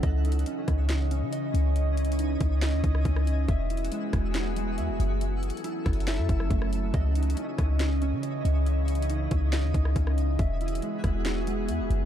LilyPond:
<<
  \new Staff \with { instrumentName = "Synth texture" } { \time 4/4 \key cis \minor \tempo 4 = 139 << { <e' dis''>1~ | <e' dis''>1 | <fis' e''>1~ | <fis' e''>1 |
<e' dis''>1~ | <e' dis''>1 | <gis' fis''>1 | } \\ { cis'1~ | cis'1 | gis1 | a1 |
cis'1~ | cis'1 | r1 | } >> }
  \new Staff \with { instrumentName = "Clean electric guitar" } { \time 4/4 \key cis \minor dis''8 dis'8 cis'4. cis'8 dis''4~ | dis''4 dis'4 dis''8 dis'8 cis'4 | e''8 e'8 gis4. gis8 e''4 | r4 e'4 e''8 e'8 a4 |
dis''8 dis'8 cis'4. cis'8 dis''4~ | dis''4 dis'4 dis''8 dis'8 cis'4 | e''8 e'8 gis4. gis8 e''4 | }
  \new Staff \with { instrumentName = "Ambient pad" } { \time 4/4 \key cis \minor << { <cis e dis''>1~ | <cis e dis''>1 | <e fis' gis'>1 | <fis e' a'>1 |
<cis e dis''>1~ | <cis e dis''>1 | <e fis' gis'>1 | } \\ { cis'1~ | cis'1 | b1 | cis'1~ |
cis'1~ | cis'1 | b1 | } >> }
  \new Staff \with { instrumentName = "808-style bass" } { \clef bass \time 4/4 \key cis \minor cis,4 r8 cis,4~ cis,16 cis8. cis,8~ | cis,4. cis,8. dis,16 cis,8 cis,4 | e,,4 r8 e,,4. e,16 e,,16 fis,,8~ | fis,,8. r8. fis,,8. fis,16 fis,,8 fis,,4 |
cis,4 r8 cis,4~ cis,16 cis8. cis,8~ | cis,4. cis,8. dis,16 cis,8 cis,4 | e,,4 r8 e,,4. e,16 e,,16 fis,,8 | }
  \new DrumStaff \with { instrumentName = "Drums" } \drummode { \time 4/4 \tuplet 3/2 { <hh bd>16 r16 r16 hh16 hh16 hh16 } hh8 <hh bd ss>8 <hh sn>8 hh8 hh8 hh8 | \tuplet 3/2 { hh16 r16 r16 hh16 hh16 hh16 } hh8 <hh bd>8 <hh sn>8 <hh bd>16 ss16 <hh bd>16 ss16 hh8 | \tuplet 3/2 { <hh bd>16 r16 r16 hh16 hh16 hh16 } hh8 <hh bd ss>8 <hh sn>8 hh8 hh8 hh8 | \tuplet 3/2 { hh16 r16 r16 hh16 hh16 hh16 hh16 r16 r16 <hh hho bd ss>16 hh16 hh16 } <hh sn>8 <hh bd>16 ss16 <hh bd>16 ss16 hh8 |
\tuplet 3/2 { <hh bd>16 r16 r16 hh16 hh16 hh16 } hh8 <hh bd ss>8 <hh sn>8 hh8 hh8 hh8 | \tuplet 3/2 { hh16 r16 r16 hh16 hh16 hh16 } hh8 <hh bd>8 <hh sn>8 <hh bd>16 ss16 <hh bd>16 ss16 hh8 | \tuplet 3/2 { <hh bd>16 r16 r16 hh16 hh16 hh16 } hh8 <hh bd ss>8 <hh sn>8 hh8 hh8 hh8 | }
>>